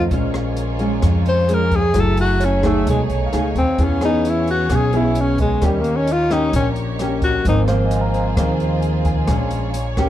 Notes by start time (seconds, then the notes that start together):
Already playing: A3 D#4 F4 C5 D#5 F#5
0.11 A#1 A#2 G#3 A#3 C#4 F4 G#4 C#5, kick, closed hi-hat
0.34 cross-stick, closed hi-hat
0.57 closed hi-hat
0.79 G#3 C#4 F4, closed hi-hat
1.02 F2, kick, cross-stick, closed hi-hat
1.26 C5, closed hi-hat
1.49 G#3 C#4 F4 G#4, closed hi-hat
1.54 A#4
1.71 kick, closed hi-hat
1.76 G#4
1.94 F#1 F#3 A3 E4 F#4 G#4 E5, kick, cross-stick, closed hi-hat
2.00 A4
2.17 F#4, closed hi-hat
2.40 C#5, closed hi-hat
2.45 C#4
2.63 A3 D#4 G#4, kick, cross-stick, closed hi-hat
2.86 B1 B2 G#3 D#4 C#5, kick, closed hi-hat
3.09 B1 C#5, closed hi-hat
3.26 F5
3.33 C#2 A3 D#4 G#4, cross-stick, closed hi-hat
3.55 D#2 C4, kick, closed hi-hat
3.78 E2 E3 B3 C#4 G#4 C#5, kick, closed hi-hat
3.84 C#4
4.01 B3 C#4 D#4 G#4, cross-stick, closed hi-hat
4.25 closed hi-hat
4.29 E4
4.47 F#4, closed hi-hat
4.70 B1 B2 B3 C#4 G#4, kick, cross-stick, closed hi-hat
4.76 G#4
4.93 B3 C#4 E4 G#4, closed hi-hat
5.15 closed hi-hat
5.21 C#4
5.38 G#3 D#5, kick, closed hi-hat
5.62 D#2 D#3 A#3 C#4 D#4 G4 C#5, kick, cross-stick, closed hi-hat
5.66 G3
5.81 A#3, closed hi-hat
5.96 C#4
6.07 closed hi-hat
6.12 F4
6.31 A#3 C#4 D#4 G4, cross-stick, closed hi-hat
6.53 A#1 A#2 A#3 C#4 G4, kick, closed hi-hat
6.76 closed hi-hat
6.99 A#3 C#4 G4, cross-stick, closed hi-hat
7.22 F#4, kick, closed hi-hat
7.45 G#1 G#2 F3 A#3 C4 F4 G#4 C5, kick, closed hi-hat
7.49 D#4
7.68 F3 A#3 C4 C5 F5, cross-stick, closed hi-hat
7.85 D#5 G#5
7.91 closed hi-hat
8.01 F5 A#5
8.14 closed hi-hat
8.37 D#2 D#3 F3 A#3 C4, kick, cross-stick, closed hi-hat
8.60 closed hi-hat
8.82 closed hi-hat
9.05 G#5, kick, closed hi-hat
9.27 A#1 A#2 F3 G#3 C#4 C#5, kick, cross-stick, closed hi-hat
9.51 closed hi-hat
9.74 closed hi-hat
9.97 A#3 C#4 G4, kick, cross-stick, closed hi-hat